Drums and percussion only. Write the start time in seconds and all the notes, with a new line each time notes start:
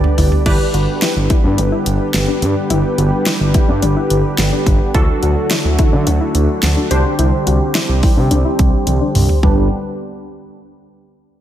0.04 floor tom
0.18 floor tom, open hi-hat
0.32 floor tom
0.46 kick, closed hi-hat, crash
0.74 closed hi-hat
1.02 snare, closed hi-hat
1.30 kick, closed hi-hat
1.58 closed hi-hat
1.86 closed hi-hat
2.14 snare, closed hi-hat
2.42 closed hi-hat
2.70 closed hi-hat
2.98 closed hi-hat
3.26 snare, closed hi-hat
3.54 kick, closed hi-hat
3.82 closed hi-hat
4.10 closed hi-hat
4.38 snare, closed hi-hat
4.66 kick, closed hi-hat
4.94 kick, closed hi-hat
5.23 closed hi-hat
5.51 snare, closed hi-hat
5.79 kick, closed hi-hat
6.07 closed hi-hat
6.35 closed hi-hat
6.63 snare, closed hi-hat
6.91 closed hi-hat
7.19 closed hi-hat
7.47 closed hi-hat
7.75 snare, closed hi-hat
8.03 kick, open hi-hat
8.31 closed hi-hat
8.59 kick, closed hi-hat
8.87 closed hi-hat, high tom
9.15 mid tom, open hi-hat
9.29 floor tom
9.43 kick, floor tom